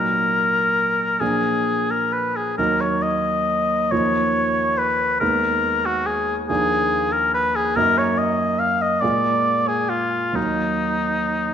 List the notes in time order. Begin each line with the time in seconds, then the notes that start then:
Already playing: A#2 F#3 A#3 D#4 A#4
1.20 A#2 F3 A#3 D4 G#4
1.91 A#4
2.12 B4
2.36 G#4
2.58 D#2 F#3 A#3 D#4 A#4
2.81 C#5
3.03 D#5
3.92 D#2 F3 A#3 F4 C#5
4.78 B4
5.20 D#2 G#3 B3 D#4 A#4
5.86 F#4
6.06 G#4
6.48 D#2 F3 A#3 D4 G#4
7.13 A#4
7.34 B4
7.56 G#4
7.76 F#2 F#3 A#3 D#4 A#4
7.98 C#5
8.18 D#5
8.59 F5
8.82 D#5
9.01 A#2 G#3 A#3 F4 D5
9.68 G#4
9.89 F4
10.32 D#2 F#3 A#3 D#4